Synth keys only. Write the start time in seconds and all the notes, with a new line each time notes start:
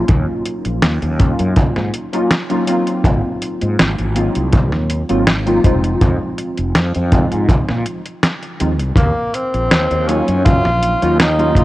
Already playing: F#3 A#3 C#4 D#4 F4
1.18 F#3 A#3 C#4 D#4 F4
2.13 F#3 A#3 C#4 D#4 F4
2.50 F#3 A#3 C#4 D#4 F4
2.67 F#3 A#3 C4 D#4 F4
4.15 F#3 A#3 C4 D#4 F4
5.09 F#3 A#3 C4 D#4 F4
5.46 F#3 A#3 C4 D#4 F4
5.63 F3 G#3 C4 D#4 F4
7.11 F3 G#3 C4 D#4 F4
8.60 F3 G#3 C4 D#4 F4
10.07 F#3 A#3 C#4 D#4 F4
11.02 F#3 A#3 C#4 D#4 F4
11.39 F#3 A#3 C#4 D#4 F4
11.55 C#3 F#3 A#3 D#4 F4